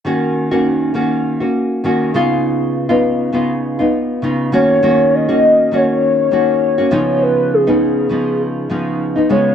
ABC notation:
X:1
M:4/4
L:1/16
Q:"Swing 16ths" 1/4=101
K:Ebm
V:1 name="Soft synth lead"
z16 | z12 z2 d2- | d2 e4 d8- d2 | c2 A6 z6 d2 |]
V:2 name="Nylon-string guitar"
[E,B,DG]3 [E,B,DG]3 [E,B,DG]3 [B,DG]3 [E,B,DG]2 [D,CEF]2- | [D,CEF]3 [D,CEF]3 [D,CEF]3 [CEF]3 [D,CEF]2 [E,B,DG]2 | [E,B,DG]3 [E,B,DG]3 [E,B,DG]4 [E,B,DG]3 [B,DG] [D,F,CE]2- | [D,F,CE]3 [D,F,CE]3 [D,F,CE]4 [D,F,CE]3 [F,CE] [D,A,CF]2 |]